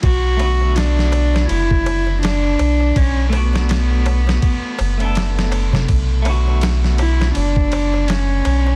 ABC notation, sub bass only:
X:1
M:4/4
L:1/8
Q:"Swing 16ths" 1/4=82
K:Bm
V:1 name="Sub bass" clef=bass
B,,,4 F,,,3 B,,, | B,,,4 z F,,,3 | B,,,4 F,,,3 B,,, |]